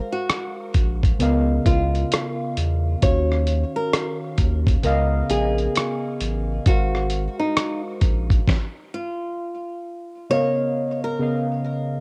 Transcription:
Already playing: G#3 F#4 A#4 C5 F5
0.12 F#4
0.29 cross-stick, closed hi-hat
0.74 A#1, kick, closed hi-hat
1.03 kick, closed hi-hat
1.19 C#2 C#3 B3 A#4 D#5 F5, closed hi-hat
1.65 C#2 C#3 B3 F4 A#4 D#5 F5, kick, closed hi-hat
1.95 closed hi-hat
2.12 cross-stick, closed hi-hat
2.57 E2, closed hi-hat
3.01 D#2 D#3 C#4 F#4 C#5 F5, kick, closed hi-hat
3.32 cross-stick
3.47 closed hi-hat
3.76 A#4
3.93 cross-stick, closed hi-hat
4.38 D#2, kick, closed hi-hat
4.67 kick, closed hi-hat
4.83 C#2 C#3 B3 A#4 D#5 F5, closed hi-hat
5.29 A#1 C#3 B3 G#4 A#4 D#5 G#5, closed hi-hat
5.58 closed hi-hat
5.76 cross-stick, closed hi-hat
6.21 A1, closed hi-hat
6.66 G#1 G#3 F#4 A#4 C5 F5, kick, closed hi-hat
6.95 cross-stick
7.10 closed hi-hat
7.39 D#4
7.57 cross-stick, closed hi-hat
8.01 A#1, kick, closed hi-hat
8.30 kick, closed hi-hat
8.48 kick, snare
8.94 F4
10.30 C#3 B3 A#4 C#5 D#5 F5
11.04 A#4
11.19 C#3 B3 A#4 D#5 F5

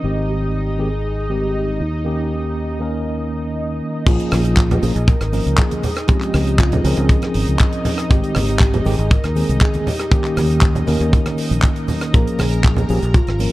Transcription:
Already playing: D#4 D#5
0.03 G#1 D#3 G#3 C4 G4
0.29 G4
0.79 D#3 G#3 C4 G4 G#4
1.29 D#3 G#3 C4 G4
1.80 D#2 D#4
2.04 D#3 A#3 C#4 G4
2.80 D#3 A#3 C#4 A#4
4.06 A#1 F3 A#3 C#4 D#4 F4 G#4 D#5, kick, closed hi-hat, crash, shaker
4.20 closed hi-hat
4.31 A#1, cross-stick, open hi-hat, high conga, shaker
4.44 F4, closed hi-hat, shaker
4.57 kick, clap, closed hi-hat, shaker
4.71 closed hi-hat, low conga
4.82 A#1 F3 A#3 C#4 G#4, open hi-hat, shaker
4.96 A#1, closed hi-hat, shaker
5.08 A#4, kick, closed hi-hat, shaker
5.21 G#1, cross-stick, closed hi-hat
5.33 F3 A#3 C#4 A#4, open hi-hat, shaker
5.46 C#2, closed hi-hat, shaker
5.58 G#4, kick, clap, closed hi-hat, shaker
5.71 closed hi-hat, high conga
5.83 open hi-hat, low conga, shaker
5.96 cross-stick, closed hi-hat, shaker
6.02 G#4
6.08 F3 G#3 C4 C#4 G4, kick, closed hi-hat, shaker
6.21 clap, closed hi-hat
6.34 C#2, cross-stick, open hi-hat, high conga, shaker
6.47 closed hi-hat, shaker
6.59 F4, kick, clap, closed hi-hat, muted conga, shaker
6.72 closed hi-hat, low conga
6.83 C#2 F3 C4 C#4 G#4 A#4, open hi-hat, high conga, shaker
6.97 C#2, closed hi-hat, muted conga, shaker
7.09 kick, closed hi-hat, shaker
7.22 cross-stick, closed hi-hat, muted conga
7.34 G#1, open hi-hat, shaker
7.47 C#2, closed hi-hat, shaker
7.59 kick, clap, closed hi-hat, shaker
7.73 closed hi-hat
7.85 open hi-hat, low conga, shaker
7.98 cross-stick, closed hi-hat, shaker
8.09 G#1 D#3 G#3 C4 G4, kick, closed hi-hat, shaker
8.24 closed hi-hat
8.35 G#1, cross-stick, open hi-hat, high conga, shaker
8.49 G4, closed hi-hat, shaker
8.59 kick, clap, closed hi-hat, shaker
8.74 closed hi-hat, low conga
8.85 G#1 D#3 G#3 C4 G4 G#4, open hi-hat, shaker
8.99 G#1, closed hi-hat, shaker
9.11 A#4, kick, closed hi-hat, shaker
9.24 D#2, cross-stick, closed hi-hat
9.35 D#3 G#3 C4 G#4, open hi-hat, shaker
9.49 C2, closed hi-hat, shaker
9.61 G#4, kick, clap, closed hi-hat
9.74 closed hi-hat, high conga
9.87 G4, open hi-hat, low conga, shaker
9.99 cross-stick, closed hi-hat, shaker
10.11 D#3 A#3 C#4 G4, kick, closed hi-hat, shaker
10.24 clap, closed hi-hat
10.37 D#2, cross-stick, open hi-hat, high conga, shaker
10.51 closed hi-hat, shaker
10.61 kick, clap, closed hi-hat, muted conga, shaker
10.75 closed hi-hat, low conga
10.86 D#2 D#3 A#3 C#4 A#4, open hi-hat, high conga, shaker
11.00 D#2, closed hi-hat, muted conga, shaker
11.13 kick, closed hi-hat, shaker
11.26 cross-stick, closed hi-hat, muted conga
11.38 open hi-hat, shaker
11.51 A#1, closed hi-hat, shaker
11.62 kick, clap, closed hi-hat, shaker
11.76 closed hi-hat
11.88 open hi-hat, low conga, shaker
12.01 cross-stick, closed hi-hat, shaker
12.13 A#1 F3 A#3 C#4 G#4 A#4 A#5, kick, closed hi-hat, shaker
12.27 closed hi-hat
12.39 A#1 G#4, cross-stick, open hi-hat, high conga, shaker
12.52 closed hi-hat, shaker
12.64 kick, clap, closed hi-hat, shaker
12.77 closed hi-hat, low conga
12.89 A#1 F3 A#3 C#4 G4 G#4, open hi-hat, shaker
13.02 A#1, closed hi-hat, shaker
13.14 F4, kick, closed hi-hat, shaker
13.27 G#1, cross-stick, closed hi-hat
13.39 F3 A#3 C#4 F4 A#4, open hi-hat, shaker

